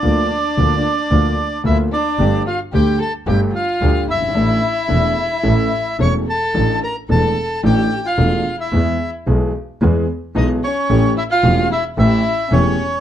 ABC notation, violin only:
X:1
M:4/4
L:1/16
Q:1/4=111
K:Aphr
V:1 name="Violin"
D12 E2 D2- | D2 F2 G2 A2 G2 F4 E2- | E12 ^c2 A2- | A2 B2 A4 G3 F4 E- |
E3 z8 z _E2 ^C2- | ^C2 E F3 E2 E4 C4 |]